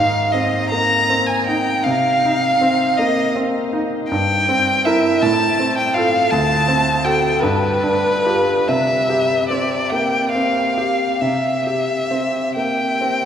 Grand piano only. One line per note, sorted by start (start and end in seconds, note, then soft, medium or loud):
0.00 1.82 G#2 soft
0.00 0.56 D#4 soft
0.34 0.94 C4 soft
0.72 1.09 A#3 soft
1.10 1.70 C4 soft
1.48 1.86 D#4 soft
1.86 4.07 C3 soft
2.25 2.84 D#4 soft
2.61 3.20 C4 soft
2.99 3.36 A#3 soft
3.35 3.96 C4 soft
3.73 4.11 D#4 soft
4.11 5.19 G2 soft
4.49 5.07 C4 soft
4.86 5.19 E4 soft
4.86 5.19 A#4 soft
5.22 6.28 A2 soft
5.60 6.17 C4 soft
5.96 6.28 F4 soft
5.96 6.29 A4 soft
6.32 7.38 D2 soft
6.68 7.26 C4 soft
7.04 7.38 F#4 soft
7.04 7.38 A4 soft
7.43 8.65 G2 soft
7.84 8.52 D4 soft
8.26 8.64 F4 soft
8.26 8.64 G4 soft
8.69 11.18 C3 soft
9.10 9.74 G4 soft
9.50 10.17 C4 soft
9.92 10.34 A#3 soft
10.35 11.04 C4 soft
10.78 11.22 G4 soft
11.22 13.25 C3 soft
11.67 12.39 G4 soft
12.11 12.83 C4 soft
12.56 13.02 A#3 soft
13.01 13.25 C4 soft